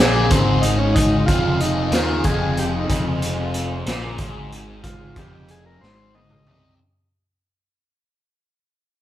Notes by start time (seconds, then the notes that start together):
Already playing: G#3 C4 F4 G#4
0.00 A#1 A#2
0.30 G#1 G#2 C4, kick, closed hi-hat
0.61 D#4, closed hi-hat
0.78 C#4
0.94 D#4, kick, closed hi-hat
1.26 F1 F2 F4, kick, closed hi-hat
1.60 D#4, closed hi-hat
1.91 D#2 D#3 F4, snare, closed hi-hat
2.24 F1 F2 G#4, kick, closed hi-hat
2.57 G4, closed hi-hat
2.76 D#4
2.89 F1 F2, kick, closed hi-hat
3.22 closed hi-hat
3.54 closed hi-hat
3.86 A#1 A#2, snare, closed hi-hat
4.18 G#1 G#2, kick, closed hi-hat
4.52 closed hi-hat
4.83 F4, kick, closed hi-hat
5.16 F1 F2 G4, kick, closed hi-hat
5.48 G#4, closed hi-hat
5.66 A#4
5.81 G#1 G#2 C5, snare
6.15 D#5, high tom
6.30 mid tom
6.46 C2 C3, mid tom